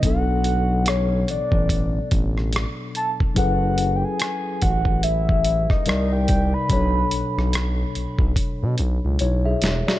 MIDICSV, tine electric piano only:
0, 0, Header, 1, 2, 480
1, 0, Start_track
1, 0, Tempo, 833333
1, 19, Time_signature, 4, 2, 24, 8
1, 5755, End_track
2, 0, Start_track
2, 0, Title_t, "Tine electric piano"
2, 0, Program_c, 0, 4
2, 0, Control_c, 0, 64, 127
2, 7, Note_on_c, 0, 47, 54
2, 14, Note_on_c, 0, 54, 51
2, 21, Note_on_c, 0, 59, 50
2, 27, Control_c, 0, 64, 0
2, 28, Note_on_c, 0, 62, 51
2, 34, Note_on_c, 0, 69, 62
2, 112, Control_c, 0, 64, 127
2, 1910, Note_off_c, 0, 47, 0
2, 1914, Note_off_c, 0, 54, 0
2, 1917, Note_off_c, 0, 59, 0
2, 1920, Note_off_c, 0, 62, 0
2, 1923, Note_off_c, 0, 69, 0
2, 1926, Note_on_c, 0, 54, 57
2, 1930, Note_on_c, 0, 61, 49
2, 1934, Note_on_c, 0, 64, 50
2, 1942, Note_on_c, 0, 68, 50
2, 1946, Control_c, 0, 64, 0
2, 1946, Note_on_c, 0, 69, 52
2, 1952, Note_on_c, 0, 71, 63
2, 2042, Control_c, 0, 64, 127
2, 3349, Note_off_c, 0, 54, 0
2, 3351, Note_off_c, 0, 61, 0
2, 3354, Note_off_c, 0, 64, 0
2, 3357, Note_off_c, 0, 68, 0
2, 3359, Note_off_c, 0, 69, 0
2, 3362, Note_off_c, 0, 71, 0
2, 3374, Note_on_c, 0, 48, 59
2, 3378, Note_on_c, 0, 55, 53
2, 3381, Note_on_c, 0, 63, 57
2, 3383, Note_on_c, 0, 70, 55
2, 3385, Control_c, 0, 64, 0
2, 3387, Note_on_c, 0, 74, 64
2, 3478, Control_c, 0, 64, 127
2, 3849, Note_on_c, 0, 47, 57
2, 3856, Note_off_c, 0, 48, 0
2, 3856, Note_on_c, 0, 54, 50
2, 3858, Note_off_c, 0, 55, 0
2, 3860, Note_off_c, 0, 63, 0
2, 3861, Note_off_c, 0, 70, 0
2, 3863, Note_off_c, 0, 74, 0
2, 3864, Note_on_c, 0, 61, 41
2, 3867, Control_c, 0, 64, 0
2, 3870, Note_on_c, 0, 69, 48
2, 3876, Note_on_c, 0, 73, 62
2, 3899, Note_on_c, 0, 62, 53
2, 3906, Note_off_c, 0, 61, 0
2, 3970, Control_c, 0, 64, 127
2, 5281, Note_off_c, 0, 69, 0
2, 5284, Note_off_c, 0, 73, 0
2, 5304, Note_on_c, 0, 73, 58
2, 5308, Note_on_c, 0, 64, 48
2, 5438, Note_off_c, 0, 73, 0
2, 5440, Note_off_c, 0, 64, 0
2, 5446, Note_on_c, 0, 76, 61
2, 5449, Note_on_c, 0, 68, 50
2, 5672, Note_off_c, 0, 76, 0
2, 5674, Note_off_c, 0, 68, 0
2, 5687, Note_on_c, 0, 74, 53
2, 5692, Note_on_c, 0, 66, 48
2, 5751, Note_off_c, 0, 47, 0
2, 5754, Note_off_c, 0, 54, 0
2, 5755, Note_off_c, 0, 62, 0
2, 5755, Note_off_c, 0, 66, 0
2, 5755, Note_off_c, 0, 74, 0
2, 5755, End_track
0, 0, End_of_file